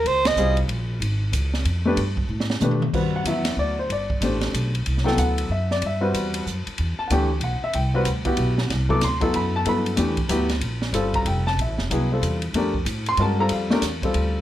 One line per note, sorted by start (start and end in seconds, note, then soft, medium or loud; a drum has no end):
0.05 0.35 C#2 medium
0.05 0.29 C5 loud
0.05 ride medium
0.25 0.58 D#5 medium
0.25 snare medium
0.25 ride medium
0.36 0.67 C2 medium
0.36 0.55 G3 medium
0.36 0.55 C4 medium
0.36 0.56 F4 medium
0.36 0.56 G#4 medium
0.36 hi-hat pedal medium
0.57 ride soft
0.68 0.99 A#1 medium
0.68 ride medium
1.00 1.32 G#1 medium
1.00 ride medium
1.32 1.64 C#2 medium
1.32 hi-hat pedal medium
1.32 ride medium
1.54 snare soft
1.65 1.96 F2 medium
1.65 ride medium
1.85 1.96 A3 medium
1.85 1.97 D4 medium
1.85 1.97 G4 medium
1.85 1.97 B4 medium
1.97 2.28 G2 medium
1.97 ride medium
2.17 kick medium
2.29 2.60 A2 medium
2.40 snare medium
2.50 snare medium
2.60 2.92 B2 medium
2.60 2.79 A3 medium
2.60 2.80 D4 medium
2.60 2.80 G4 medium
2.60 2.80 B4 medium
2.60 hi-hat pedal medium
2.60 mid tom medium
2.71 mid tom medium
2.82 mid tom medium
2.93 3.24 G2 medium
2.93 3.24 G3 medium
2.93 3.24 C4 medium
2.93 3.25 F#4 medium
2.93 3.25 B4 medium
2.93 kick medium
2.93 crash medium
3.16 3.26 F#5 medium
3.24 3.56 E2 medium
3.24 3.74 F#3 medium
3.24 3.74 B3 medium
3.24 3.74 E4 medium
3.24 3.75 F#4 medium
3.24 3.57 E5 medium
3.24 hi-hat pedal medium
3.24 ride medium
3.45 snare medium
3.45 ride medium
3.57 3.88 D2 medium
3.57 3.78 D5 medium
3.79 3.90 C5 medium
3.89 4.20 G1 medium
3.89 4.21 D5 medium
3.89 ride medium
4.10 kick medium
4.21 4.52 A1 medium
4.21 4.70 A3 medium
4.21 4.70 D4 medium
4.21 4.70 G4 medium
4.21 4.71 C5 medium
4.21 hi-hat pedal soft
4.21 ride medium
4.41 snare soft
4.41 ride soft
4.53 4.84 B1 medium
4.53 hi-hat pedal medium
4.53 ride medium
4.75 ride soft
4.86 5.17 C2 medium
4.86 ride medium
4.97 snare soft
5.04 5.47 F#3 medium
5.04 5.47 B3 medium
5.04 5.47 E4 medium
5.04 5.48 A4 medium
5.04 5.17 G5 medium
5.04 snare soft
5.17 5.48 D2 medium
5.17 5.48 F#5 medium
5.17 hi-hat pedal medium
5.17 ride medium
5.38 ride medium
5.49 5.80 F#2 medium
5.49 5.70 E5 medium
5.71 5.82 D5 medium
5.71 snare soft
5.82 6.13 G2 medium
5.82 ride medium
5.86 6.14 E5 medium
6.01 6.43 G3 medium
6.01 6.43 C4 medium
6.01 6.43 F#4 medium
6.01 6.44 B4 medium
6.14 6.45 E2 medium
6.14 hi-hat pedal medium
6.14 ride medium
6.34 ride medium
6.46 6.64 F#2 medium
6.46 hi-hat pedal medium
6.67 muted upright bass stroke soft
6.67 ride soft
6.78 6.97 E2 medium
6.78 ride medium
6.99 7.10 A5 medium
7.08 7.40 D2 medium
7.08 7.28 E3 medium
7.08 7.28 D4 medium
7.08 7.10 F#5 medium
7.08 hi-hat pedal medium
7.08 ride medium
7.12 7.29 A3 medium
7.12 7.29 G4 medium
7.12 7.40 G5 medium
7.40 7.59 B1 medium
7.40 7.62 F#5 medium
7.40 ride medium
7.61 7.74 E5 medium
7.61 muted upright bass stroke soft
7.73 8.05 C2 medium
7.73 8.04 G5 medium
7.73 ride medium
7.94 8.05 G3 medium
7.94 8.05 C4 medium
7.94 8.05 F#4 medium
7.94 8.06 B4 medium
8.05 8.37 D2 medium
8.05 hi-hat pedal medium
8.05 ride medium
8.25 8.67 B3 medium
8.25 8.67 E4 medium
8.25 8.67 F#4 medium
8.25 8.68 G4 medium
8.25 kick medium
8.25 ride soft
8.37 8.68 B1 medium
8.37 ride medium
8.58 snare medium
8.70 9.01 C2 medium
8.70 snare soft
8.70 ride medium
8.89 9.00 F#3 medium
8.89 9.01 B3 medium
8.89 9.01 E4 medium
8.89 9.01 A4 medium
8.89 9.02 D6 loud
8.89 kick medium
9.01 9.33 D2 medium
9.01 9.33 C6 medium
9.01 snare soft
9.01 hi-hat pedal medium
9.01 ride medium
9.21 9.63 F#3 medium
9.21 9.63 B3 medium
9.21 9.63 E4 medium
9.21 9.64 A4 medium
9.21 kick medium
9.21 ride soft
9.34 9.65 F#2 medium
9.34 9.54 B5 medium
9.34 ride medium
9.56 9.67 A5 medium
9.65 9.97 G2 medium
9.65 9.97 F#3 medium
9.65 9.97 B3 medium
9.65 9.97 E4 medium
9.65 9.97 A4 medium
9.65 9.97 B5 medium
9.65 ride medium
9.86 ride soft
9.96 10.28 E2 medium
9.96 10.15 E3 medium
9.96 10.15 A3 medium
9.96 10.15 D4 medium
9.96 10.16 G4 medium
9.96 hi-hat pedal medium
9.96 ride medium
10.17 kick medium
10.17 ride soft
10.29 10.60 D2 medium
10.29 10.47 F#3 medium
10.29 10.48 B3 medium
10.29 10.48 E4 medium
10.29 10.48 G4 medium
10.29 hi-hat pedal medium
10.29 ride medium
10.49 snare soft
10.49 ride soft
10.61 10.92 A#1 medium
10.61 ride medium
10.82 snare soft
10.92 11.24 G1 medium
10.92 11.41 G3 medium
10.92 11.42 C4 medium
10.92 11.42 F4 medium
10.92 11.42 A4 medium
10.92 hi-hat pedal medium
10.92 ride medium
11.14 11.26 A#5 medium
11.14 kick medium
11.14 ride soft
11.25 11.56 F1 medium
11.25 11.46 G5 medium
11.25 ride medium
11.47 11.58 A5 loud
11.47 snare soft
11.57 11.68 A#1 medium
11.57 ride medium
11.61 11.79 E5 medium
11.68 11.78 A1 medium
11.78 11.89 F1 medium
11.78 snare soft
11.90 12.21 C2 medium
11.90 12.08 F#3 medium
11.90 12.09 B3 medium
11.90 12.09 E4 medium
11.90 12.09 G#4 medium
11.90 hi-hat pedal medium
11.90 ride medium
12.11 12.39 G3 medium
12.11 12.39 C4 medium
12.11 12.39 F4 soft
12.11 12.40 A4 medium
12.21 12.53 E2 medium
12.21 hi-hat pedal medium
12.21 ride medium
12.42 ride soft
12.53 12.84 F2 medium
12.53 12.72 A3 medium
12.53 12.73 D4 medium
12.53 12.73 G4 medium
12.53 12.73 A#4 medium
12.53 ride medium
12.74 kick soft
12.85 13.16 A2 medium
12.85 hi-hat pedal medium
12.85 ride medium
13.06 13.19 C6 loud
13.06 ride soft
13.17 13.49 G2 medium
13.17 13.36 G#3 medium
13.17 13.37 C#4 medium
13.17 13.37 F#4 medium
13.17 13.37 A#4 medium
13.17 ride medium
13.22 13.39 A5 medium
13.39 13.67 G3 medium
13.39 13.67 C4 medium
13.39 13.67 F4 medium
13.39 13.67 A4 medium
13.39 13.51 A#5 medium
13.49 13.81 F2 medium
13.49 13.71 F5 medium
13.49 ride medium
13.70 13.81 A3 medium
13.70 13.82 D4 medium
13.70 13.82 G4 medium
13.70 13.82 A#4 medium
13.70 snare soft
13.82 14.13 E2 medium
13.82 snare soft
13.82 hi-hat pedal medium
13.82 ride medium
14.02 14.41 G3 medium
14.02 14.41 C4 medium
14.02 14.41 F4 medium
14.02 14.41 A4 medium
14.02 kick medium
14.02 ride soft
14.14 14.41 D2 medium
14.14 ride medium